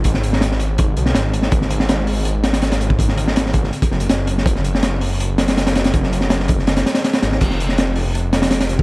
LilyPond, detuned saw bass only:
\new Staff \with { instrumentName = "Detuned saw bass" } { \clef bass \time 4/4 \key aes \lydian \tempo 4 = 163 aes,,2~ aes,,8 ces,8 aes,,4 | aes,,1 | aes,,2 r8 ges,,8 ges,,4 | ges,,1 |
ges,,2~ ges,,8 r4 aes,,8 | f,,1 | }